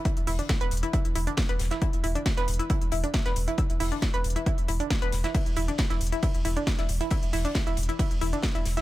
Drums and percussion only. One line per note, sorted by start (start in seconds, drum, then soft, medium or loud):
0.05 kick loud
0.05 closed hi-hat medium
0.17 closed hi-hat medium
0.27 open hi-hat loud
0.27 open hi-hat medium
0.39 closed hi-hat medium
0.49 kick loud
0.49 snare loud
0.49 closed hi-hat medium
0.61 closed hi-hat medium
0.71 closed hi-hat medium
0.71 open hi-hat loud
0.77 closed hi-hat medium
0.83 closed hi-hat medium
0.93 kick loud
0.93 closed hi-hat medium
1.05 closed hi-hat medium
1.15 closed hi-hat medium
1.15 open hi-hat loud
1.27 closed hi-hat medium
1.37 kick loud
1.37 snare loud
1.37 closed hi-hat medium
1.49 closed hi-hat medium
1.59 snare soft
1.59 closed hi-hat medium
1.59 open hi-hat loud
1.71 snare medium
1.71 closed hi-hat medium
1.82 kick loud
1.82 closed hi-hat medium
1.93 closed hi-hat medium
2.04 closed hi-hat medium
2.04 open hi-hat loud
2.15 closed hi-hat medium
2.26 kick loud
2.26 snare loud
2.26 closed hi-hat medium
2.37 snare soft
2.37 closed hi-hat medium
2.48 closed hi-hat medium
2.48 open hi-hat loud
2.54 closed hi-hat medium
2.59 closed hi-hat medium
2.70 kick loud
2.70 closed hi-hat medium
2.81 closed hi-hat medium
2.92 closed hi-hat medium
2.92 open hi-hat loud
3.04 closed hi-hat medium
3.14 kick loud
3.14 snare loud
3.14 closed hi-hat medium
3.26 snare medium
3.26 closed hi-hat medium
3.36 closed hi-hat medium
3.36 open hi-hat loud
3.48 closed hi-hat medium
3.48 closed hi-hat soft
3.58 kick loud
3.58 closed hi-hat medium
3.70 closed hi-hat medium
3.80 open hi-hat loud
3.80 open hi-hat medium
3.92 closed hi-hat medium
4.02 kick loud
4.02 snare loud
4.02 closed hi-hat loud
4.02 closed hi-hat medium
4.14 closed hi-hat medium
4.24 closed hi-hat medium
4.24 open hi-hat loud
4.30 closed hi-hat medium
4.36 closed hi-hat medium
4.46 kick loud
4.46 closed hi-hat medium
4.58 closed hi-hat medium
4.68 closed hi-hat medium
4.68 open hi-hat loud
4.80 closed hi-hat medium
4.90 kick loud
4.90 snare loud
4.90 closed hi-hat medium
5.02 closed hi-hat medium
5.12 snare soft
5.12 closed hi-hat medium
5.12 open hi-hat loud
5.24 snare medium
5.24 closed hi-hat medium
5.35 kick loud
5.35 closed hi-hat medium
5.35 closed hi-hat loud
5.35 ride medium
5.46 closed hi-hat medium
5.56 closed hi-hat medium
5.56 open hi-hat loud
5.68 closed hi-hat soft
5.78 kick loud
5.78 snare loud
5.78 closed hi-hat medium
5.78 ride medium
5.90 snare soft
5.90 closed hi-hat medium
6.01 closed hi-hat medium
6.01 open hi-hat loud
6.07 closed hi-hat medium
6.12 closed hi-hat medium
6.23 kick loud
6.23 closed hi-hat medium
6.23 ride medium
6.34 closed hi-hat soft
6.45 closed hi-hat medium
6.45 open hi-hat loud
6.57 closed hi-hat medium
6.67 kick loud
6.67 snare loud
6.67 closed hi-hat medium
6.67 ride medium
6.78 snare medium
6.78 closed hi-hat medium
6.89 closed hi-hat medium
6.89 open hi-hat loud
7.01 closed hi-hat medium
7.01 closed hi-hat soft
7.11 kick loud
7.11 closed hi-hat medium
7.11 ride medium
7.23 closed hi-hat medium
7.33 open hi-hat medium
7.33 open hi-hat loud
7.45 closed hi-hat medium
7.55 kick loud
7.55 snare loud
7.55 closed hi-hat medium
7.55 ride medium
7.67 closed hi-hat soft
7.77 closed hi-hat medium
7.77 open hi-hat loud
7.83 closed hi-hat medium
7.89 closed hi-hat medium
7.99 kick loud
7.99 closed hi-hat medium
7.99 ride medium
8.11 closed hi-hat soft
8.21 closed hi-hat medium
8.21 open hi-hat loud
8.33 closed hi-hat medium
8.43 kick loud
8.43 snare loud
8.43 closed hi-hat medium
8.43 ride medium
8.55 closed hi-hat medium
8.65 snare soft
8.65 closed hi-hat medium
8.65 open hi-hat loud
8.77 snare medium
8.77 closed hi-hat medium